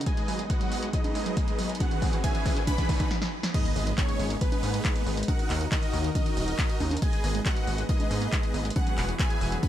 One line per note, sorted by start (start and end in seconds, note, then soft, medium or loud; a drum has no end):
0.00 1.76 D#4 medium
0.00 closed hi-hat medium
0.00 riser medium
0.06 1.79 G#3 medium
0.06 0.14 G#3 medium
0.06 3.08 B3 medium
0.06 0.44 G#4 medium
0.06 0.44 B4 medium
0.06 0.44 D#5 medium
0.06 0.44 G#5 loud
0.06 kick loud
0.06 closed hi-hat medium
0.17 0.25 G#3 loud
0.17 closed hi-hat soft
0.28 0.45 G#1 loud
0.28 0.36 F#3 loud
0.28 open hi-hat loud
0.39 0.46 G#3 medium
0.39 closed hi-hat soft
0.50 0.57 G#3 loud
0.50 0.87 F#4 medium
0.50 0.87 B4 medium
0.50 0.87 D#5 medium
0.50 0.87 F#5 loud
0.50 kick loud
0.50 closed hi-hat medium
0.61 0.68 F#3 loud
0.61 closed hi-hat medium
0.72 0.89 G#1 loud
0.72 0.79 G#3 medium
0.72 open hi-hat loud
0.83 0.90 G#3 loud
0.83 closed hi-hat medium
0.93 1.01 F#3 loud
0.93 1.72 D#4 medium
0.93 1.72 G#4 medium
0.93 1.72 B4 medium
0.93 1.72 D#5 loud
0.93 kick loud
0.93 closed hi-hat medium
1.04 1.12 G#3 medium
1.04 closed hi-hat soft
1.04 high conga medium
1.15 1.32 G#1 medium
1.15 1.23 G#3 loud
1.15 open hi-hat loud
1.26 1.33 F#3 loud
1.26 closed hi-hat medium
1.37 1.44 G#3 medium
1.37 kick loud
1.37 closed hi-hat medium
1.48 1.55 G#3 loud
1.48 closed hi-hat soft
1.59 1.75 G#1 medium
1.59 1.66 F#3 loud
1.59 open hi-hat loud
1.69 1.77 G#3 medium
1.69 closed hi-hat soft
1.75 closed hi-hat medium
1.80 1.88 E3 loud
1.80 3.10 E3 medium
1.80 2.18 F#4 medium
1.80 3.10 F#4 medium
1.80 2.18 G#4 medium
1.80 3.10 G#4 medium
1.80 2.18 B4 medium
1.80 2.18 F#5 loud
1.80 kick loud
1.80 closed hi-hat medium
1.80 high conga medium
1.91 1.99 D#3 loud
1.91 closed hi-hat soft
2.02 2.19 E1 loud
2.02 2.09 E3 medium
2.02 kick loud
2.02 open hi-hat loud
2.13 2.20 E3 loud
2.13 closed hi-hat soft
2.24 2.31 D#3 loud
2.24 2.61 G#4 medium
2.24 2.61 B4 medium
2.24 2.61 E5 medium
2.24 2.61 G#5 loud
2.24 kick loud
2.24 closed hi-hat medium
2.35 2.42 E3 medium
2.35 closed hi-hat soft
2.46 2.62 E1 loud
2.46 2.53 E3 loud
2.46 kick loud
2.46 open hi-hat loud
2.56 2.64 D#3 loud
2.56 closed hi-hat soft
2.67 2.75 E3 medium
2.67 3.11 B4 medium
2.67 3.11 F#5 medium
2.67 3.11 G#5 medium
2.67 3.11 B5 loud
2.67 kick loud
2.67 closed hi-hat medium
2.67 high conga medium
2.78 2.86 E3 loud
2.78 kick medium
2.78 closed hi-hat medium
2.89 3.06 E2 medium
2.89 2.96 D#3 loud
2.89 kick loud
2.89 open hi-hat loud
3.00 3.07 E3 medium
3.00 kick medium
3.00 closed hi-hat medium
3.11 snare medium
3.22 snare medium
3.43 snare medium
3.54 3.62 G#3 medium
3.54 5.27 G#3 medium
3.54 5.27 B3 medium
3.54 3.92 D#4 medium
3.54 8.72 D#4 medium
3.54 3.92 G#4 medium
3.54 3.92 B4 medium
3.54 3.92 D#5 loud
3.54 kick loud
3.54 closed hi-hat medium
3.54 crash loud
3.54 impact medium
3.65 3.76 A#3 medium
3.65 closed hi-hat medium
3.76 3.93 G#1 loud
3.76 3.83 G#3 medium
3.76 open hi-hat loud
3.87 3.94 G#3 medium
3.87 closed hi-hat medium
3.98 4.08 A#3 medium
3.98 4.35 C#4 medium
3.98 4.35 D#4 medium
3.98 4.35 G#4 medium
3.98 4.35 C#5 loud
3.98 kick loud
3.98 clap loud
3.98 closed hi-hat medium
4.09 4.16 G#3 medium
4.09 closed hi-hat medium
4.19 4.36 G#1 loud
4.19 4.27 G#3 medium
4.19 open hi-hat medium
4.30 4.41 A#3 medium
4.30 closed hi-hat medium
4.41 4.49 G#3 medium
4.41 5.20 B3 medium
4.41 5.20 D#4 medium
4.41 5.20 G#4 medium
4.41 5.20 B4 loud
4.41 kick loud
4.41 closed hi-hat medium
4.52 4.60 G#3 medium
4.52 closed hi-hat medium
4.52 high conga medium
4.63 4.80 G#2 medium
4.63 4.73 A#3 medium
4.63 open hi-hat loud
4.74 4.81 G#3 medium
4.74 closed hi-hat medium
4.85 4.92 G#3 medium
4.85 kick loud
4.85 clap loud
4.85 closed hi-hat medium
4.96 5.06 A#3 medium
4.96 closed hi-hat medium
5.06 5.23 G#1 loud
5.06 5.14 G#3 medium
5.06 open hi-hat medium
5.17 5.25 G#3 medium
5.17 closed hi-hat medium
5.23 closed hi-hat medium
5.28 7.00 D#3 medium
5.28 5.38 D#3 medium
5.28 7.00 F#4 medium
5.28 5.66 F#4 medium
5.28 7.00 A#4 medium
5.28 5.66 A#4 medium
5.28 5.66 D#5 medium
5.28 5.66 F#5 loud
5.28 kick loud
5.28 closed hi-hat medium
5.28 high conga medium
5.39 5.46 D#3 medium
5.39 closed hi-hat medium
5.50 5.67 D#2 loud
5.50 5.57 D#3 medium
5.50 clap medium
5.50 open hi-hat loud
5.61 5.71 D#3 medium
5.61 closed hi-hat medium
5.72 5.79 D#3 medium
5.72 6.09 D#4 medium
5.72 6.09 F#4 medium
5.72 6.09 A#4 medium
5.72 6.09 D#5 loud
5.72 kick loud
5.72 clap loud
5.72 closed hi-hat medium
5.83 5.90 D#3 medium
5.83 closed hi-hat medium
5.93 6.10 D#2 loud
5.93 6.03 D#3 medium
5.93 open hi-hat loud
6.04 6.12 D#3 medium
6.04 closed hi-hat medium
6.15 6.23 D#3 medium
6.15 6.93 D#4 medium
6.15 6.93 F#4 medium
6.15 6.93 A#4 medium
6.15 6.93 D#5 loud
6.15 kick loud
6.15 closed hi-hat medium
6.15 high conga medium
6.26 6.36 D#3 medium
6.26 closed hi-hat medium
6.37 6.54 D#1 medium
6.37 6.44 D#3 medium
6.37 open hi-hat loud
6.48 6.55 D#3 medium
6.48 closed hi-hat medium
6.59 6.68 D#3 medium
6.59 kick loud
6.59 clap loud
6.59 closed hi-hat medium
6.70 6.77 D#3 medium
6.70 closed hi-hat medium
6.80 6.97 D#2 loud
6.80 6.88 D#3 medium
6.80 open hi-hat loud
6.80 high conga medium
6.91 7.02 D#3 medium
6.91 closed hi-hat soft
6.91 high conga medium
6.97 closed hi-hat medium
7.02 7.10 G#3 medium
7.02 8.74 G#3 medium
7.02 9.68 B3 medium
7.02 7.40 G#4 medium
7.02 7.40 B4 medium
7.02 7.40 D#5 medium
7.02 7.39 G#5 loud
7.02 7.40 G#5 loud
7.02 kick loud
7.02 closed hi-hat medium
7.13 7.20 G#3 medium
7.13 closed hi-hat soft
7.24 7.41 G#1 loud
7.24 7.34 A#3 medium
7.24 open hi-hat loud
7.35 7.42 G#3 medium
7.35 closed hi-hat medium
7.46 7.53 G#3 medium
7.46 7.83 F#4 medium
7.46 7.83 B4 medium
7.46 7.83 D#5 medium
7.46 7.83 F#5 loud
7.46 kick loud
7.46 clap loud
7.46 closed hi-hat medium
7.57 7.67 A#3 medium
7.57 closed hi-hat medium
7.67 7.84 G#1 loud
7.67 7.75 G#3 medium
7.67 open hi-hat loud
7.78 7.86 G#3 medium
7.78 closed hi-hat medium
7.89 7.99 A#3 medium
7.89 8.67 D#4 medium
7.89 8.67 G#4 medium
7.89 8.67 B4 medium
7.89 8.67 D#5 loud
7.89 kick loud
7.89 closed hi-hat medium
8.00 8.07 G#3 medium
8.00 closed hi-hat medium
8.00 high conga medium
8.11 8.28 G#2 medium
8.11 8.18 G#3 medium
8.11 open hi-hat loud
8.22 8.32 A#3 medium
8.22 closed hi-hat medium
8.32 8.40 G#3 medium
8.32 kick loud
8.32 clap loud
8.32 closed hi-hat medium
8.43 8.51 G#3 medium
8.43 closed hi-hat medium
8.54 8.71 G#1 medium
8.54 8.65 A#3 medium
8.54 open hi-hat loud
8.65 8.72 G#3 medium
8.65 closed hi-hat soft
8.70 closed hi-hat medium
8.76 8.83 E3 medium
8.76 9.68 E3 medium
8.76 9.13 F#4 medium
8.76 9.68 F#4 medium
8.76 9.13 G#4 medium
8.76 9.68 G#4 medium
8.76 9.13 B4 medium
8.76 9.13 F#5 loud
8.76 kick loud
8.76 closed hi-hat medium
8.76 high conga medium
8.87 8.97 F#3 medium
8.87 closed hi-hat medium
8.98 9.15 E1 loud
8.98 9.05 E3 medium
8.98 clap medium
8.98 open hi-hat loud
9.09 9.16 E3 medium
9.09 closed hi-hat soft
9.19 9.30 F#3 medium
9.19 9.57 G#4 medium
9.19 9.57 B4 medium
9.19 9.57 E5 medium
9.19 9.57 G#5 loud
9.19 kick loud
9.19 clap loud
9.19 closed hi-hat medium
9.30 9.38 E3 medium
9.30 closed hi-hat medium
9.41 9.58 E1 loud
9.41 9.49 E3 medium
9.41 open hi-hat loud
9.52 9.62 F#3 medium
9.52 closed hi-hat soft
9.63 9.68 E3 medium
9.63 9.68 B4 medium
9.63 9.68 F#5 medium
9.63 9.68 G#5 medium
9.63 9.68 B5 loud
9.63 kick loud
9.63 closed hi-hat medium
9.63 high conga medium